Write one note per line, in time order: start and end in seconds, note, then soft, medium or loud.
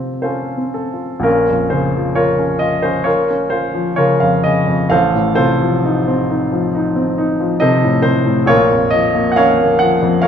0.00 1.28 C3 soft
0.00 0.57 C4 soft
0.00 0.24 C#4 soft
0.00 0.23 F4 soft
0.00 0.22 A4 soft
0.22 0.58 C#4 soft
0.22 0.72 F4 soft
0.22 0.72 A4 soft
0.22 0.75 C5 soft
0.57 1.13 C4 soft
0.74 1.25 A4 soft
0.93 1.23 F4 soft
1.20 4.86 A#1 medium
1.20 1.72 A#4 medium
1.24 1.69 C#4 medium
1.24 1.69 F4 medium
1.50 1.87 F2 soft
1.70 2.09 C#3 soft
1.70 2.16 C5 medium
1.95 2.31 F3 soft
2.15 2.58 F4 medium
2.15 2.58 A#4 soft
2.15 2.61 C#5 medium
2.39 2.75 C#4 soft
2.59 2.97 F4 soft
2.59 2.83 D#5 medium
2.83 3.20 C#4 soft
2.83 3.06 C5 medium
3.04 3.48 F4 soft
3.04 3.48 A#4 medium
3.04 3.51 C#5 medium
3.30 3.66 C#4 soft
3.50 3.89 F4 soft
3.50 3.97 C5 medium
3.74 4.12 F3 soft
3.96 4.35 C#3 soft
3.96 4.19 F4 medium
3.96 4.19 A#4 medium
3.96 4.20 C#5 medium
4.20 4.60 F2 soft
4.20 4.44 F5 medium
4.44 4.83 C#3 soft
4.44 4.92 D#5 medium
4.67 4.92 F2 soft
4.90 8.44 A1 medium
4.90 5.35 A4 medium
4.90 5.34 C5 medium
4.90 5.38 F5 medium
5.15 5.53 A2 soft
5.35 5.76 C3 soft
5.35 7.56 F4 medium
5.35 7.56 A4 medium
5.35 7.59 C5 medium
5.61 5.99 F3 soft
5.85 6.22 D#4 soft
6.08 6.44 C4 soft
6.30 6.66 D#4 soft
6.52 6.88 F3 soft
6.75 7.10 D#4 soft
6.96 7.31 C4 soft
7.18 7.53 D#4 soft
7.40 7.75 F3 soft
7.60 7.96 C3 soft
7.60 8.02 A4 medium
7.60 8.01 C5 medium
7.60 8.04 D#5 medium
7.84 8.19 A2 soft
8.02 8.39 C3 soft
8.02 8.48 C5 medium
8.26 8.49 A2 soft
8.46 10.28 A#1 medium
8.46 8.90 F4 medium
8.46 8.90 A#4 medium
8.46 8.93 C#5 medium
8.72 9.07 F2 soft
8.90 9.28 F3 soft
8.90 9.29 D#5 medium
9.15 9.50 A#3 soft
9.32 9.38 F#5 medium
9.36 9.73 C#4 medium
9.36 9.78 A#4 medium
9.36 9.78 C#5 medium
9.36 9.80 F5 medium
9.60 9.94 A#3 medium
9.79 10.15 F3 soft
9.79 10.23 F#5 medium
10.02 10.28 F2 soft
10.22 10.28 F3 medium
10.22 10.28 A#4 medium
10.22 10.28 C#5 medium
10.22 10.28 F5 medium